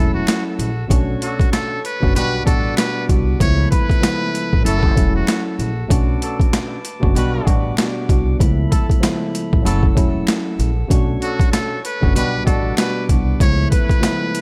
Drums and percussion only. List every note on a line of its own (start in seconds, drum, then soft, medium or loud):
0.27 finger snap medium
0.27 snare loud
0.27 closed hi-hat medium
0.59 closed hi-hat medium
0.90 kick loud
0.90 closed hi-hat medium
1.22 closed hi-hat medium
1.40 kick loud
1.40 closed hi-hat soft
1.53 finger snap medium
1.53 snare loud
1.53 closed hi-hat loud
1.85 closed hi-hat medium
2.03 kick medium
2.16 closed hi-hat loud
2.47 kick loud
2.47 closed hi-hat medium
2.77 finger snap medium
2.77 snare loud
2.77 closed hi-hat medium
3.09 kick medium
3.09 closed hi-hat medium
3.40 kick loud
3.40 closed hi-hat medium
3.72 kick medium
3.72 closed hi-hat medium
3.90 kick medium
3.90 closed hi-hat soft
4.03 finger snap medium
4.03 snare loud
4.03 closed hi-hat loud
4.35 closed hi-hat medium
4.53 kick medium
4.66 closed hi-hat loud
4.83 kick medium
4.97 kick loud
4.97 closed hi-hat medium
5.27 finger snap medium
5.27 snare loud
5.27 closed hi-hat medium
5.60 closed hi-hat medium
5.90 kick loud
5.90 closed hi-hat medium
6.22 closed hi-hat medium
6.40 kick medium
6.40 closed hi-hat soft
6.53 finger snap medium
6.53 snare loud
6.53 closed hi-hat loud
6.85 closed hi-hat medium
7.03 kick medium
7.16 closed hi-hat loud
7.47 kick loud
7.47 closed hi-hat medium
7.77 finger snap medium
7.77 snare loud
7.77 closed hi-hat medium
8.09 kick medium
8.09 closed hi-hat medium
8.40 kick loud
8.40 closed hi-hat medium
8.72 kick medium
8.72 closed hi-hat medium
8.90 kick medium
8.90 closed hi-hat soft
9.03 finger snap medium
9.03 snare loud
9.03 closed hi-hat loud
9.35 closed hi-hat medium
9.53 kick medium
9.66 closed hi-hat loud
9.83 kick loud
9.97 kick loud
9.97 closed hi-hat medium
10.27 finger snap medium
10.27 snare loud
10.27 closed hi-hat medium
10.60 closed hi-hat medium
10.90 kick loud
10.90 closed hi-hat medium
11.22 closed hi-hat medium
11.40 kick loud
11.40 closed hi-hat soft
11.53 finger snap medium
11.53 snare loud
11.53 closed hi-hat loud
11.85 closed hi-hat medium
12.03 kick medium
12.16 closed hi-hat loud
12.47 kick loud
12.47 closed hi-hat medium
12.77 finger snap medium
12.77 snare loud
12.77 closed hi-hat medium
13.09 kick medium
13.09 closed hi-hat medium
13.40 kick loud
13.40 closed hi-hat medium
13.72 kick medium
13.72 closed hi-hat medium
13.89 kick loud
13.89 closed hi-hat soft
14.03 finger snap medium
14.03 snare loud
14.03 closed hi-hat loud
14.35 closed hi-hat medium